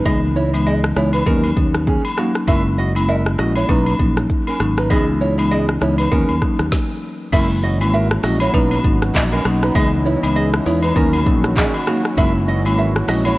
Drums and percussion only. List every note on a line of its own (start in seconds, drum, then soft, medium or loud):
0.06 kick loud
0.06 high agogo medium
0.06 shaker medium
0.36 shaker soft
0.54 high agogo medium
0.54 shaker medium
0.66 low woodblock medium
0.66 shaker medium
0.84 cross-stick loud
0.96 cross-stick medium
0.96 shaker soft
1.13 high agogo medium
1.13 shaker medium
1.26 kick medium
1.26 shaker medium
1.44 high agogo medium
1.57 kick loud
1.57 shaker medium
1.74 cross-stick medium
1.74 shaker medium
1.87 kick medium
1.87 shaker medium
2.05 high agogo medium
2.18 cross-stick medium
2.18 shaker medium
2.35 cross-stick medium
2.35 shaker medium
2.48 kick loud
2.48 high agogo medium
2.48 shaker medium
2.78 shaker soft
2.96 high agogo medium
2.96 shaker medium
3.09 low woodblock medium
3.09 shaker medium
3.26 cross-stick medium
3.38 cross-stick medium
3.38 shaker medium
3.56 high agogo medium
3.56 shaker medium
3.69 kick loud
3.69 shaker medium
3.86 high agogo medium
3.99 kick medium
3.99 shaker medium
4.17 cross-stick medium
4.17 shaker medium
4.30 kick medium
4.30 shaker medium
4.47 high agogo medium
4.60 cross-stick medium
4.60 shaker medium
4.77 cross-stick medium
4.77 shaker medium
4.90 kick loud
4.90 high agogo medium
4.90 shaker medium
5.21 shaker medium
5.39 high agogo medium
5.39 shaker medium
5.51 low woodblock medium
5.51 shaker medium
5.69 cross-stick medium
5.81 cross-stick medium
5.81 shaker medium
5.98 high agogo medium
5.98 shaker medium
6.11 kick medium
6.11 shaker medium
6.29 high agogo medium
6.42 kick loud
6.42 cross-stick medium
6.42 shaker medium
6.59 cross-stick medium
6.59 shaker medium
6.72 kick loud
6.72 snare medium
7.33 kick loud
7.33 crash loud
7.33 high agogo medium
7.33 shaker medium
7.63 shaker soft
7.81 high agogo medium
7.81 shaker loud
7.93 shaker medium
8.11 cross-stick loud
8.23 cross-stick medium
8.23 open hi-hat medium
8.23 shaker medium
8.40 high agogo medium
8.40 shaker medium
8.54 kick loud
8.54 shaker medium
8.71 high agogo medium
8.84 kick loud
8.84 shaker medium
9.02 cross-stick medium
9.02 shaker medium
9.15 kick medium
9.15 clap loud
9.15 low woodblock medium
9.15 shaker medium
9.32 high agogo medium
9.45 cross-stick medium
9.45 shaker medium
9.62 cross-stick medium
9.62 shaker medium
9.75 kick loud
9.75 high agogo medium
9.75 shaker medium
10.06 shaker medium
10.23 high agogo medium
10.23 shaker loud
10.36 shaker medium
10.53 cross-stick loud
10.66 open hi-hat medium
10.66 shaker soft
10.83 high agogo medium
10.83 shaker medium
10.96 kick medium
10.96 shaker medium
11.13 high agogo medium
11.27 kick loud
11.27 shaker medium
11.44 cross-stick medium
11.44 shaker medium
11.57 kick medium
11.57 clap medium
11.57 low woodblock medium
11.57 shaker medium
11.74 high agogo medium
11.87 cross-stick medium
11.87 shaker medium
12.05 cross-stick medium
12.05 shaker medium
12.18 kick loud
12.18 high agogo medium
12.18 shaker medium
12.48 shaker medium
12.66 high agogo medium
12.66 shaker loud
12.78 shaker medium
12.96 cross-stick loud
13.08 cross-stick medium
13.08 open hi-hat medium
13.08 shaker soft
13.25 high agogo medium
13.25 shaker medium